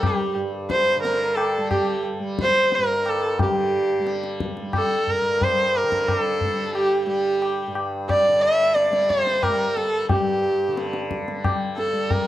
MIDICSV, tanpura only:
0, 0, Header, 1, 2, 480
1, 0, Start_track
1, 0, Tempo, 670391
1, 25, Time_signature, 5, 2, 24, 8
1, 8787, End_track
2, 0, Start_track
2, 0, Title_t, "Tanpura"
2, 0, Program_c, 0, 104
2, 0, Note_on_c, 0, 43, 55
2, 0, Note_on_c, 0, 50, 53
2, 0, Note_on_c, 0, 55, 64
2, 245, Note_off_c, 0, 43, 0
2, 248, Note_on_c, 0, 43, 52
2, 686, Note_off_c, 0, 50, 0
2, 689, Note_on_c, 0, 50, 52
2, 1127, Note_off_c, 0, 55, 0
2, 1127, Note_on_c, 0, 55, 52
2, 1571, Note_off_c, 0, 55, 0
2, 1571, Note_on_c, 0, 55, 53
2, 1988, Note_off_c, 0, 43, 0
2, 1991, Note_on_c, 0, 43, 51
2, 2418, Note_off_c, 0, 50, 0
2, 2420, Note_on_c, 0, 50, 51
2, 2859, Note_off_c, 0, 55, 0
2, 2859, Note_on_c, 0, 55, 66
2, 3306, Note_off_c, 0, 55, 0
2, 3306, Note_on_c, 0, 55, 55
2, 3727, Note_off_c, 0, 43, 0
2, 3730, Note_on_c, 0, 43, 54
2, 4174, Note_off_c, 0, 50, 0
2, 4177, Note_on_c, 0, 50, 52
2, 4618, Note_off_c, 0, 55, 0
2, 4618, Note_on_c, 0, 55, 62
2, 5055, Note_off_c, 0, 55, 0
2, 5055, Note_on_c, 0, 55, 57
2, 5493, Note_off_c, 0, 43, 0
2, 5495, Note_on_c, 0, 43, 54
2, 5930, Note_off_c, 0, 50, 0
2, 5933, Note_on_c, 0, 50, 60
2, 6373, Note_off_c, 0, 55, 0
2, 6373, Note_on_c, 0, 55, 56
2, 6798, Note_off_c, 0, 55, 0
2, 6798, Note_on_c, 0, 55, 62
2, 7223, Note_off_c, 0, 43, 0
2, 7226, Note_on_c, 0, 43, 54
2, 7646, Note_off_c, 0, 50, 0
2, 7649, Note_on_c, 0, 50, 64
2, 8087, Note_off_c, 0, 55, 0
2, 8087, Note_on_c, 0, 55, 52
2, 8540, Note_off_c, 0, 55, 0
2, 8540, Note_on_c, 0, 55, 61
2, 8787, Note_off_c, 0, 43, 0
2, 8787, Note_off_c, 0, 50, 0
2, 8787, Note_off_c, 0, 55, 0
2, 8787, End_track
0, 0, End_of_file